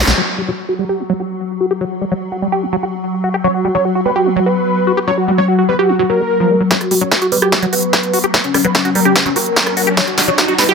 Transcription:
Already playing: ambient pad F#3
0.07 analog synth bass B1, acid bass F#3, snare, shekere
0.18 ambient pad F#3, acid bass F#3
0.38 acid bass G3
0.48 acid bass F#3
0.69 acid bass F#4
0.79 acid bass G3
0.89 acid bass G4
0.99 acid bass F#3
1.09 acid bass F#3
1.20 acid bass F#4
1.60 acid bass F#4
1.71 acid bass G4
1.81 acid bass F#3
2.01 acid bass G3
2.12 acid bass F#3
2.32 acid bass F#4
2.42 acid bass G3
2.52 acid bass G4
2.63 acid bass F#3
2.73 acid bass F#3
2.83 acid bass F#4
3.24 acid bass F#4
3.34 acid bass G4
3.44 acid bass F#3, analog synth lead C#5
3.54 analog synth lead F#4
3.65 acid bass G3, analog synth lead F#4
3.75 acid bass F#3, analog synth lead C#5
3.85 analog synth lead F#4
3.95 analog synth lead F#4, acid bass F#4
4.05 acid bass G3, analog synth lead B4
4.16 analog synth lead F#4, acid bass G4
4.26 acid bass F#3, analog synth lead F#4
4.36 acid bass F#3, analog synth lead F#4
4.46 acid bass F#4, analog synth lead B4
4.87 acid bass F#4
4.97 acid bass G4
5.07 acid bass F#3, analog synth lead C#5
5.18 analog synth lead F#4
5.28 acid bass G3, analog synth lead F#4
5.38 acid bass F#3, analog synth lead C#5
5.48 analog synth lead F#4
5.58 analog synth lead F#4, acid bass F#4
5.69 acid bass G3, analog synth lead B4
5.79 analog synth lead F#4, acid bass G4
5.89 acid bass F#3, analog synth lead F#4
5.99 acid bass F#3, analog synth lead F#4
6.09 acid bass F#3, analog synth lead A#4
6.20 acid bass A#3
6.40 acid bass F3
6.50 acid bass A#3
6.61 acid bass F#3
6.71 acid bass F#3, ambient pad F#3, analog synth lead C#5, kick, snare, closed hi-hat, riser
6.81 analog synth lead F#4, cross-stick, closed hi-hat
6.91 acid bass G3, analog synth lead F#4, open hi-hat
7.01 acid bass F#3, analog synth lead C#5, closed hi-hat
7.11 analog synth lead F#4, kick, snare, closed hi-hat
7.22 analog synth lead F#4, acid bass F#4, closed hi-hat
7.32 acid bass G3, analog synth lead B4, open hi-hat
7.42 analog synth lead F#4, acid bass G4, cross-stick, closed hi-hat
7.52 acid bass F#3, analog synth lead F#4, kick, snare, closed hi-hat
7.63 acid bass F#3, analog synth lead F#4, closed hi-hat
7.73 acid bass F#4, analog synth lead B4, open hi-hat
7.83 closed hi-hat
7.93 kick, cross-stick, snare, closed hi-hat
8.03 closed hi-hat
8.14 acid bass F#4, open hi-hat
8.24 acid bass G4, closed hi-hat
8.34 acid bass F#3, analog synth lead B4, kick, snare, closed hi-hat
8.44 analog synth lead C#4, closed hi-hat
8.54 acid bass G3, analog synth lead C#4, cross-stick, open hi-hat
8.65 acid bass F#3, analog synth lead B4, closed hi-hat
8.75 analog synth lead C#4, kick, snare, closed hi-hat
8.85 analog synth lead C#4, acid bass F#4, closed hi-hat
8.95 acid bass G3, analog synth lead A#4, open hi-hat
9.05 analog synth lead C#4, acid bass G4, cross-stick, closed hi-hat
9.16 acid bass F#3, analog synth lead C#4, kick, snare, closed hi-hat
9.26 acid bass F#3, analog synth lead C#4, closed hi-hat
9.36 acid bass F#4, analog synth lead A#4, open hi-hat
9.46 closed hi-hat
9.56 kick, snare, closed hi-hat
9.67 cross-stick, closed hi-hat
9.77 acid bass F#4, open hi-hat
9.87 acid bass G4
9.97 acid bass F#3, analog synth lead C#5, kick, snare, closed hi-hat
10.07 analog synth lead F#4, closed hi-hat
10.18 acid bass G3, analog synth lead F#4, snare, open hi-hat
10.28 acid bass F#3, analog synth lead C#5, closed hi-hat
10.38 analog synth lead F#4, kick, snare, closed hi-hat
10.48 acid bass F#4, analog synth lead F#4, closed hi-hat
10.58 acid bass G3, analog synth lead B4, snare, open hi-hat
10.69 analog synth lead F#4, acid bass G4, closed hi-hat

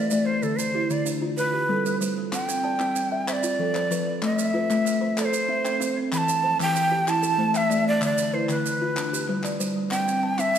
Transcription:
Already playing: kalimba A3 A4 B4 C5 D5, shakuhachi D5
0.11 kalimba A3 D5, maracas
0.26 kalimba A3, shakuhachi C5
0.43 kalimba D3, shakuhachi A4, maracas
0.58 kalimba D3, shakuhachi C5, maracas
0.74 kalimba E4 G4
0.90 kalimba D3, shakuhachi D5, maracas
1.05 kalimba D3 D4, maracas
1.22 kalimba F4
1.37 kalimba D3 F4, shakuhachi B4, maracas
1.53 kalimba G4
1.69 kalimba G3 C4 A4
1.85 kalimba G3 B4, maracas
2.01 kalimba G3 C5, maracas
2.18 kalimba G3
2.33 kalimba C4, shakuhachi G5, clap, maracas
2.48 kalimba C4, maracas
2.64 kalimba D5 A5
2.79 kalimba C4, clap, maracas
2.96 kalimba C4, clap, maracas
3.12 kalimba E5
3.27 kalimba C4 C5, shakuhachi E5, clap, maracas
3.33 shakuhachi D5
3.43 kalimba F4, maracas
3.59 kalimba F3 A4
3.75 kalimba F3 C5, clap, maracas
3.91 kalimba F3 B4, clap, maracas
4.07 kalimba F3
4.22 kalimba A3, shakuhachi D#5, clap, maracas
4.36 kalimba A3, shakuhachi E5, maracas
4.54 kalimba F4 B4
4.70 kalimba A3, clap, maracas
4.86 kalimba A3, clap, maracas
5.01 kalimba C5
5.17 kalimba A3 A4, shakuhachi D5, clap, maracas
5.25 shakuhachi C5
5.33 kalimba C5, maracas
5.49 kalimba C4 E5
5.65 kalimba C4 G5, clap, maracas
5.80 kalimba C4 F5, clap, maracas
5.96 kalimba C4
6.12 kalimba E3, shakuhachi B5, clap, maracas
6.18 shakuhachi A5
6.28 kalimba E3, maracas
6.44 kalimba F3 C5
6.59 kalimba E3, shakuhachi G5, clap, maracas
6.76 kalimba E3, clap, maracas
6.92 kalimba G4
7.07 kalimba E3 E4, shakuhachi A5, clap, maracas
7.23 kalimba A4, maracas
7.38 kalimba A3 C5
7.54 kalimba A3 E5, shakuhachi E5, clap, maracas
7.70 kalimba A3 D5, clap, maracas
7.86 kalimba A3, shakuhachi D5
8.01 kalimba D3, shakuhachi D5, clap, maracas
8.18 kalimba D3, maracas
8.33 kalimba E4 B4, shakuhachi C5
8.49 kalimba D3, shakuhachi B4, clap, maracas
8.65 kalimba D3, maracas
8.82 kalimba F4
8.97 kalimba D3 D4, clap, maracas
9.13 kalimba G4, maracas
9.28 kalimba G3 B4, clap
9.43 kalimba G3 D5, clap, maracas
9.60 kalimba G3 C5, maracas
9.76 kalimba G3
9.91 kalimba C4, shakuhachi G5, clap, maracas
10.08 kalimba C4, maracas
10.23 kalimba A5
10.38 kalimba C4, shakuhachi E5, clap, maracas
10.54 kalimba C4, clap, maracas

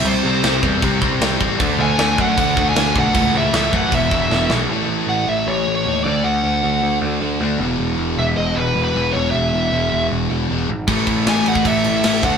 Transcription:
Already playing: distorted electric guitar C3 G3 C4
0.04 picked electric bass C2, distorted electric guitar C3 G3 C4, lead electric guitar C5, crash
0.24 picked electric bass C2, distorted electric guitar C3 G3 C4
0.44 picked electric bass C2, distorted electric guitar C3 G3 C4, snare, crash
0.63 picked electric bass E2, distorted electric guitar C3 G3 C4, kick
0.82 picked electric bass C2, distorted electric guitar C3 G3 C4, kick, crash
1.02 picked electric bass C2, distorted electric guitar C3 G3 C4, kick
1.21 picked electric bass C2, distorted electric guitar C3 G3 C4, snare, crash
1.41 picked electric bass A1, distorted electric guitar C3 G3 C4, kick
1.60 picked electric bass D2, distorted electric guitar D3 A3 D4, kick, crash
1.79 picked electric bass D2, distorted electric guitar D3 A3 D4, lead electric guitar G#5
1.99 picked electric bass D2, distorted electric guitar D3 A3 D4, snare, crash
2.18 picked electric bass F#2, distorted electric guitar D3 A3 D4, lead electric guitar F#5, kick
2.37 picked electric bass D2, distorted electric guitar D3 A3 D4, lead electric guitar F#5, kick, crash
2.57 picked electric bass D2, distorted electric guitar D3 A3 D4, kick
2.69 lead electric guitar G#5
2.75 picked electric bass D2, distorted electric guitar D3 A3 D4, snare, crash
2.95 picked electric bass B1, distorted electric guitar D3 A3 D4, lead electric guitar F#5, kick
3.14 picked electric bass C#2, distorted electric guitar A2 E3 A3, kick, crash
3.34 picked electric bass C#2, distorted electric guitar A2 E3 A3
3.38 lead electric guitar E5
3.53 picked electric bass C#2, distorted electric guitar A2 E3 A3, lead electric guitar E5, snare, crash
3.72 picked electric bass F#2, distorted electric guitar A2 E3 A3, lead electric guitar F#5, kick
3.92 picked electric bass E1, distorted electric guitar E2 B2 E3, lead electric guitar E5, kick, crash
4.11 picked electric bass E1, distorted electric guitar E2 B2 E3, kick
4.30 picked electric bass E1, distorted electric guitar E2 B2 E3, snare
4.50 picked electric bass B1, distorted electric guitar E2 B2 E3, snare
4.70 picked electric bass A1, distorted electric guitar A2 E3 A3
4.88 picked electric bass A1
5.07 picked electric bass A1, lead electric guitar F#5
5.27 picked electric bass A1, distorted electric guitar A2 E3 A3, lead electric guitar E5
5.47 picked electric bass A1, lead electric guitar C#5
5.67 picked electric bass A1
5.75 lead electric guitar C#5
5.85 picked electric bass D#2, distorted electric guitar A2 E3 A3
6.04 picked electric bass D2, distorted electric guitar D3 A3 D4, lead electric guitar D5
6.24 picked electric bass D2, lead electric guitar F#5
6.44 picked electric bass D2
6.63 picked electric bass D2, distorted electric guitar D3 A3 D4
6.82 picked electric bass D2
7.01 picked electric bass D2
7.21 picked electric bass D2, distorted electric guitar D3 A3 D4
7.40 picked electric bass D2, distorted electric guitar D3 A3 D4
7.59 picked electric bass E1, distorted electric guitar E2 B2 E3
7.78 picked electric bass E1
7.98 picked electric bass E1
8.17 picked electric bass E1, distorted electric guitar E2 B2 E3, lead electric guitar E5
8.36 picked electric bass E1, lead electric guitar D#5
8.55 picked electric bass E1, lead electric guitar B4
8.75 picked electric bass E1, distorted electric guitar E2 B2 E3
8.84 lead electric guitar B4
8.95 picked electric bass E1, distorted electric guitar E2 B2 E3
9.12 picked electric bass E1, distorted electric guitar E2 B2, lead electric guitar C#5
9.16 distorted electric guitar E3
9.31 picked electric bass E1, lead electric guitar E5
9.54 picked electric bass E1
9.71 picked electric bass E1, distorted electric guitar E2 B2 E3
9.92 picked electric bass E1
10.11 picked electric bass E1
10.29 picked electric bass E1, distorted electric guitar E2 B2 E3
10.49 picked electric bass E1, distorted electric guitar E2 B2 E3
10.69 picked electric bass G#1
10.87 picked electric bass A1, distorted electric guitar A2 E3 A3, kick, crash
11.07 picked electric bass A1, kick, crash
11.27 picked electric bass A1, lead electric guitar G#5, snare, crash
11.45 picked electric bass A1, distorted electric guitar A2 E3 A3, lead electric guitar F#5, crash
11.55 kick
11.64 picked electric bass A1, distorted electric guitar A2 E3 A3, lead electric guitar E5, kick, crash
11.84 picked electric bass A1, crash
11.96 lead electric guitar E5
12.04 picked electric bass A1, distorted electric guitar A2 E3 A3, snare, crash
12.23 picked electric bass D2, distorted electric guitar D3 A3 D4, lead electric guitar F#5, kick, crash

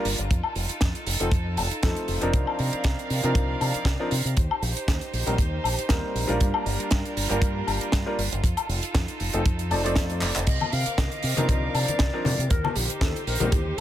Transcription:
Already playing: violin section G3 D4 F4 A#4
0.05 fingered electric bass G1, open hi-hat
0.18 fingered electric bass G1, closed hi-hat
0.30 fingered electric bass F2, violin section D#4 A4, kick, closed hi-hat
0.43 high woodblock
0.55 fingered electric bass F1, open hi-hat
0.69 closed hi-hat
0.81 fingered electric bass F2, kick, snare, closed hi-hat
0.95 closed hi-hat
1.06 fingered electric bass F1, open hi-hat
1.20 fingered electric bass F1, grand piano F3 A3 C4 D#4 A4, closed hi-hat
1.32 fingered electric bass F2, kick, closed hi-hat
1.57 fingered electric bass F1, open hi-hat, high woodblock
1.71 closed hi-hat
1.82 fingered electric bass F2, grand piano F3 A3 C4 D#4 A4, kick, snare, closed hi-hat
1.96 closed hi-hat
2.08 fingered electric bass F1, open hi-hat
2.21 fingered electric bass F1, grand piano F3 C4 D4 D#4 A#4, closed hi-hat
2.33 fingered electric bass C2, violin section C4 A#4 D5 F5, kick, closed hi-hat
2.47 high woodblock
2.59 fingered electric bass C3, open hi-hat
2.73 muted fingered electric bass stroke, closed hi-hat
2.84 fingered electric bass C2, kick, snare, closed hi-hat
2.99 closed hi-hat
3.10 fingered electric bass C3, open hi-hat
3.23 fingered electric bass C3, grand piano F3 C4 D4 D#4 A#4, closed hi-hat
3.35 fingered electric bass C2, kick, closed hi-hat
3.61 fingered electric bass C3, open hi-hat, high woodblock
3.74 muted fingered electric bass stroke, closed hi-hat
3.85 fingered electric bass C2, kick, snare, closed hi-hat
3.99 grand piano F3 C4 D4 D#4 A#4
4.11 fingered electric bass C3, open hi-hat
4.25 fingered electric bass C3, closed hi-hat
4.37 fingered electric bass D#2, violin section D#4 G4 C5, kick, closed hi-hat
4.51 high woodblock
4.62 fingered electric bass A#1, open hi-hat
4.77 closed hi-hat
4.88 fingered electric bass D#2, kick, snare, closed hi-hat
5.01 closed hi-hat
5.13 fingered electric bass A#1, open hi-hat
5.27 fingered electric bass A#1, grand piano G3 A#3 C4 D#4 A#4, closed hi-hat
5.38 fingered electric bass D#2, kick, closed hi-hat
5.64 fingered electric bass A#1, open hi-hat, high woodblock
5.79 closed hi-hat
5.89 fingered electric bass D#2, grand piano G3 A#3 C4 D#4 A#4, kick, snare, closed hi-hat
6.15 fingered electric bass A#1, open hi-hat
6.28 fingered electric bass A#1, grand piano G3 A#3 D4 F4 A#4, closed hi-hat
6.40 fingered electric bass G2, violin section G3 D4 F4 A#4, kick, closed hi-hat
6.54 high woodblock
6.66 fingered electric bass G1, open hi-hat
6.80 closed hi-hat
6.91 fingered electric bass G2, kick, snare, closed hi-hat
7.05 closed hi-hat
7.17 fingered electric bass G1, open hi-hat
7.29 fingered electric bass G1, grand piano G3 A#3 D4 F4 A#4, closed hi-hat
7.42 fingered electric bass G2, kick, closed hi-hat
7.67 fingered electric bass G1, open hi-hat, high woodblock
7.81 closed hi-hat
7.92 fingered electric bass G2, kick, snare, closed hi-hat
8.06 grand piano G3 A#3 D4 F4 A#4
8.18 fingered electric bass G1, open hi-hat
8.32 fingered electric bass G1, closed hi-hat
8.43 fingered electric bass F2, violin section D#4 A4, kick, closed hi-hat
8.57 closed hi-hat, high woodblock
8.69 fingered electric bass F1, open hi-hat
8.83 closed hi-hat
8.95 fingered electric bass F2, kick, snare, closed hi-hat
9.08 closed hi-hat
9.20 fingered electric bass F1, open hi-hat
9.33 fingered electric bass F1, grand piano F3 A3 C4 D#4 A4, closed hi-hat
9.46 fingered electric bass F2, kick, closed hi-hat
9.59 closed hi-hat
9.71 fingered electric bass F1, grand piano F3 A3 C4 D#4 D5, open hi-hat, high woodblock
9.83 grand piano F3 A3 C4 D#4 D5, closed hi-hat
9.96 fingered electric bass F2, kick, snare, closed hi-hat
10.10 closed hi-hat
10.21 fingered electric bass F1, clap, open hi-hat
10.36 fingered electric bass F1, clap, closed hi-hat
10.47 fingered electric bass C2, violin section C4 A#4 F5 D6, flute D#5, kick, closed hi-hat, crash
10.61 high conga, high woodblock
10.72 fingered electric bass C3, flute F5, open hi-hat
10.86 muted fingered electric bass stroke, closed hi-hat
10.98 fingered electric bass C2, flute D#5, kick, snare, closed hi-hat, high conga
11.12 closed hi-hat
11.23 fingered electric bass C3, open hi-hat
11.36 fingered electric bass C3, grand piano F3 C4 D4 D#4 A#4, closed hi-hat, high conga
11.49 fingered electric bass C2, flute D#5, kick, closed hi-hat
11.74 fingered electric bass C3, flute D5, open hi-hat, high woodblock
11.88 muted fingered electric bass stroke, closed hi-hat, high conga
11.99 fingered electric bass C2, kick, snare, closed hi-hat
12.13 grand piano F3 C4 D4 D#4 A#4
12.25 fingered electric bass C3, open hi-hat, high conga, low conga
12.39 fingered electric bass C3, closed hi-hat
12.50 fingered electric bass D#2, violin section D#4 G4 C5, flute A#4, kick, closed hi-hat
12.64 high conga, high woodblock
12.75 fingered electric bass A#1, flute G4, open hi-hat
12.90 closed hi-hat
13.01 fingered electric bass D#2, flute A4, kick, snare, closed hi-hat, high conga
13.16 closed hi-hat
13.26 fingered electric bass A#1, flute A#4, open hi-hat
13.40 fingered electric bass A#1, grand piano G3 A#3 C4 D#4 A#4, closed hi-hat, high conga
13.52 fingered electric bass D#2, flute G4, kick, closed hi-hat
13.77 flute A4

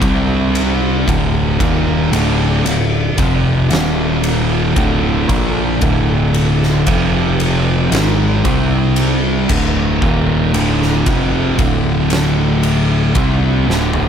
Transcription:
0.01 picked electric bass C2, distorted electric guitar C3 G3 C4, string machine C3 G3 D4, kick, ride
0.55 ride
1.07 picked electric bass D1, distorted electric guitar D2 A2 D3, string machine A3 D4 E5, kick, ride
1.59 picked electric bass D#1, distorted electric guitar D#2 A#2 D#3, kick, ride
2.11 picked electric bass D1, distorted electric guitar D2 A2 D3, ride
2.65 picked electric bass D1, distorted electric guitar D2 A2, ride
3.18 picked electric bass F1, distorted electric guitar F2 C3 F3, kick, ride
3.70 picked electric bass D#1, distorted electric guitar D#2 A#2 D#3, string machine D#3 A#3 F4, snare, ride
4.24 ride
4.76 picked electric bass D1, distorted electric guitar D2 A2 D3, string machine D3 E4 A4, kick, ride
5.29 picked electric bass A#1, distorted electric guitar A#2 F3 A#3, kick, ride
5.81 picked electric bass D1, distorted electric guitar D2 A2 D3, kick, ride
6.34 ride
6.63 snare
6.87 picked electric bass F1, distorted electric guitar F2 C3 F3, string machine F3 C4 G4, kick, ride
7.40 ride
7.91 picked electric bass G#1, distorted electric guitar G#2 D#3 G#3, string machine F3 D4 E5, snare, ride
8.44 picked electric bass C2, string machine C3 G3 D4, distorted electric guitar C3 G3 C4, kick, ride
8.96 ride
9.48 picked electric bass D1, distorted electric guitar D2 A2 D3, string machine A3 D4 E5, kick, crash
10.02 picked electric bass D#1, distorted electric guitar D#2 A#2 D#3, kick
10.53 picked electric bass D1, distorted electric guitar D2 A2 D3, ride
10.82 snare
11.06 picked electric bass F1, distorted electric guitar F2 C3 F3, kick, ride
11.58 picked electric bass D1, distorted electric guitar D2 A2 D3, kick, ride
12.10 snare, ride
12.63 ride
13.15 picked electric bass C2, distorted electric guitar C3 G3 C4, kick, ride
13.67 picked electric bass D1, distorted electric guitar D2 A2 D3, snare
13.94 floor tom

